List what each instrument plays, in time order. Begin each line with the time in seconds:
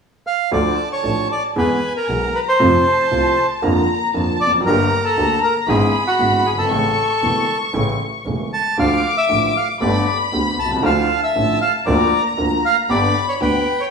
0.27 bandoneon F5
0.51 upright piano D2 D3 F3 A3 D4 A4, double bass D2, bandoneon D5, violin section A5
0.93 bandoneon C#5
1.03 upright piano A1 A2 F3 A3 D4 A4, double bass A1
1.32 bandoneon D5
1.56 upright piano E2 E3 G#3 B3 G#4, double bass E2, bandoneon B4, violin section G#5
1.97 bandoneon A#4
2.08 upright piano B1 B2 E3 G#3 B3 G#4, double bass B1, violin section A#5
2.35 bandoneon B4
2.48 bandoneon C5
2.59 upright piano F2 C3 F3 A3 F4, double bass F2, violin section A5
3.11 upright piano C2 C3 F3 A3 F4, double bass C2
3.62 upright piano F2 D3 F3 A#3 F4, double bass F2, violin section A#5
4.14 upright piano F2 D3 F3 A#3 F4, double bass F2, violin section A5
4.40 double bass F1, bandoneon D5
4.46 upright piano E2
4.54 upright piano F2
4.60 upright piano F#2
4.65 double bass G1, upright piano G1 G2 D3 G3 A#3 G4, bandoneon A#4, violin section A#5
5.05 bandoneon A4
5.17 double bass D2, upright piano D2 D3 G3 A#3 G4
5.43 bandoneon A#4
5.67 double bass G#1, upright piano G#1 G#2 D3 G#3 B3 E4, bandoneon G#4, violin section B5
6.07 bandoneon F#4
6.19 upright piano G#1 G#2 D3 G#3 B3 E4, double bass G#1
6.45 double bass G1, bandoneon G#4
6.52 upright piano F#1
6.58 upright piano G1, bandoneon A4
6.65 upright piano G#1
6.70 double bass A1, upright piano A1 A2 C#3 E3 A3 E4, violin section C#6
7.22 upright piano E1 E2 C#3 E3 A3 E4, double bass E1
7.73 upright piano A1 A2 C#3 E3 A3 E4, double bass A1
8.26 upright piano E1 E2 C#3 E3 A3 E4, double bass E1
8.53 bandoneon A5
8.77 upright piano D2 D3 F3 A3 F4, double bass D2, bandoneon F5, violin section D6
9.17 bandoneon E5
9.29 upright piano A1 A2 D3 F3 A3 F4, double bass A1
9.57 bandoneon F5
9.81 upright piano G1 G2 D3 A3 B3 G4, double bass G1, bandoneon D5, violin section B5
10.32 upright piano D2 D3 A3 B3 G4, double bass D2
10.58 double bass C2, bandoneon A5
10.65 upright piano B1
10.71 upright piano C2
10.76 upright piano C#2
10.82 upright piano D2 D3 F3 A3 E4, double bass D2, bandoneon F5, violin section A5
11.23 bandoneon E5
11.35 double bass A1, upright piano A1 A2 D3 F3 A3 E4, violin section A5
11.61 bandoneon F5
11.86 upright piano D2 D3 F3 A#3 F4, double bass D2, bandoneon D5, violin section A#5
12.37 upright piano D2 D3 F3 A#3 F4, double bass D2
12.65 bandoneon F5
12.89 double bass G1, upright piano G1 G2 D3 G3 B3 G4, bandoneon D5, violin section B5
13.28 bandoneon C#5
13.40 upright piano D2 D3 G3 B3 G4, double bass D2, bandoneon B4, violin section G5
13.81 bandoneon C#5